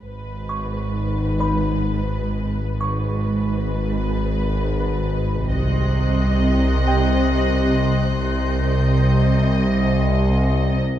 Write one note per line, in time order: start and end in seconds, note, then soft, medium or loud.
0.02 2.75 G#1 soft
0.02 2.76 G#1 soft
0.02 2.76 G#2 soft
0.02 2.76 B4 soft
0.49 2.79 C#6 soft
1.40 4.12 B4 soft
1.40 4.12 B5 soft
2.79 5.48 G#1 soft
2.79 5.49 G#1 soft
2.79 5.49 G#2 soft
2.79 5.48 B4 soft
2.79 5.49 C#6 soft
5.52 8.24 C2 soft
5.52 8.25 C2 medium
5.52 8.24 C3 soft
5.52 8.21 D#5 soft
5.52 10.55 C6 soft
5.52 8.59 F#6 soft
6.88 9.60 G5 soft
8.25 10.81 C2 soft
8.25 10.99 C2 medium
8.25 10.81 C3 soft
8.25 10.82 D#5 soft
8.59 9.60 G6 soft